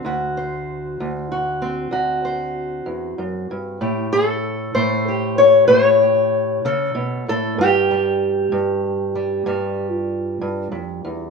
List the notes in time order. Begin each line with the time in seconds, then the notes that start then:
Already playing: A4
0.05 D2 F#4
0.37 C5
1.00 D2
1.32 F#4
1.62 C4
1.91 D2 F#4
2.25 C5
2.86 E2
3.18 F#2
3.51 G2
3.81 A2 G4
4.13 A4
4.75 A2 C5
5.08 G4
5.38 C#5
5.68 A2 C5
5.85 C#5
6.02 G4
6.65 C#3 A4
6.95 B2
7.28 A2 A4
7.58 G2 G4
7.91 G3
8.52 G2
9.15 G3
9.46 G2 G3
9.91 F4
10.41 G2
10.72 F2
11.05 E2